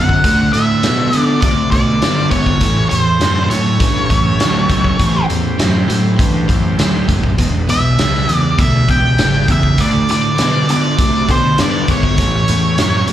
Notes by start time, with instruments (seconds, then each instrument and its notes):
Already playing: picked electric bass F#2, distorted electric guitar D3 B3, tonewheel organ C4 F4 F#4 A4, lead electric guitar F#5
0.09 kick
0.24 picked electric bass D2, distorted electric guitar D3 A3, tonewheel organ C4 F4 F#4 A4, kick, closed hi-hat
0.53 picked electric bass A2, distorted electric guitar D3 A3, lead electric guitar E5, closed hi-hat
0.83 picked electric bass B2, distorted electric guitar D3 B3, snare, closed hi-hat
1.13 picked electric bass D3, distorted electric guitar D3 B3, closed hi-hat
1.19 lead electric guitar D5
1.41 picked electric bass C3, distorted electric guitar D3 A3, lead electric guitar D5, kick, closed hi-hat
1.71 picked electric bass B2, distorted electric guitar D3 A3, lead electric guitar D5, kick, closed hi-hat
2.02 picked electric bass G2, distorted electric guitar D3 B3, snare, closed hi-hat
2.31 picked electric bass G#1, distorted electric guitar D3 B3, lead electric guitar C#5, kick, closed hi-hat
2.46 kick
2.60 picked electric bass A1, distorted electric guitar A2 E3, tonewheel organ C#4 E4 G4 A4, kick, closed hi-hat
2.89 picked electric bass E2, distorted electric guitar A2 E3, lead electric guitar C5, closed hi-hat
3.19 picked electric bass F#2, distorted electric guitar A2 F#3, snare, closed hi-hat
3.44 lead electric guitar C5
3.49 distorted electric guitar A2 F#3, picked electric bass A2, lead electric guitar C#5, closed hi-hat
3.80 picked electric bass G2, distorted electric guitar A2 E3, kick, closed hi-hat
4.10 picked electric bass F#2, distorted electric guitar A2 E3, kick, closed hi-hat
4.39 picked electric bass D2, distorted electric guitar A2 F#3, snare, closed hi-hat
4.70 picked electric bass C#2, distorted electric guitar A2 F#3, kick, closed hi-hat
4.84 kick
4.99 picked electric bass A1, distorted electric guitar A2 E3, tonewheel organ C#4 E4 G4 C5, kick, closed hi-hat
5.29 picked electric bass E2, distorted electric guitar A2 E3, closed hi-hat
5.59 picked electric bass F#2, distorted electric guitar A2 F#3, snare, closed hi-hat
5.88 distorted electric guitar A2 F#3, picked electric bass A2, closed hi-hat
6.18 picked electric bass G2, distorted electric guitar A2 E3, kick, closed hi-hat
6.48 picked electric bass F#2, distorted electric guitar A2 E3, kick, closed hi-hat
6.79 picked electric bass D2, distorted electric guitar A2 F#3, snare, closed hi-hat
7.08 picked electric bass F#1, distorted electric guitar A2 F#3, kick, closed hi-hat
7.24 kick
7.38 picked electric bass E1, distorted electric guitar E2 B2, tonewheel organ D#4 G#4 A4 C5, kick, closed hi-hat
7.60 tonewheel organ D4 G4 G#4 B4
7.68 picked electric bass B1, distorted electric guitar E2 B2, lead electric guitar E5, closed hi-hat
7.98 picked electric bass C#2, distorted electric guitar E2 C#3, snare, closed hi-hat
8.14 snare
8.27 distorted electric guitar E2 C#3, picked electric bass E2, closed hi-hat
8.36 lead electric guitar D5
8.58 picked electric bass D2, distorted electric guitar E2 B2, lead electric guitar E5, kick, closed hi-hat
8.88 picked electric bass C#2, distorted electric guitar E2 B2, lead electric guitar G5, kick, closed hi-hat
9.18 picked electric bass G#1, distorted electric guitar E2 C#3, snare, closed hi-hat
9.48 picked electric bass E2, distorted electric guitar E2 C#3, lead electric guitar E5, kick, closed hi-hat
9.63 kick
9.78 picked electric bass D2, distorted electric guitar D3 A3, tonewheel organ F4 F#4 A4 C5, lead electric guitar D5, kick, closed hi-hat
10.09 picked electric bass A2, distorted electric guitar D3 A3, lead electric guitar D5, closed hi-hat
10.38 picked electric bass B2, distorted electric guitar D3 B3, snare, closed hi-hat
10.69 distorted electric guitar D3 B3, picked electric bass D3, lead electric guitar D5, closed hi-hat
10.98 picked electric bass C3, distorted electric guitar D3 A3, kick, closed hi-hat
11.29 picked electric bass B2, distorted electric guitar D3 A3, lead electric guitar C5, kick, closed hi-hat
11.58 picked electric bass G2, distorted electric guitar D3 B3, lead electric guitar D5, snare, closed hi-hat
11.88 picked electric bass G#1, distorted electric guitar D3 B3, lead electric guitar C#5, kick, closed hi-hat
12.03 kick
12.18 picked electric bass A1, distorted electric guitar A2 E3, tonewheel organ C#4 E4 G4 C#5, kick, closed hi-hat
12.48 picked electric bass E2, distorted electric guitar A2 E3, closed hi-hat
12.78 picked electric bass F#2, distorted electric guitar A2 F#3, snare, closed hi-hat
13.08 distorted electric guitar A2 F#3, picked electric bass A2, closed hi-hat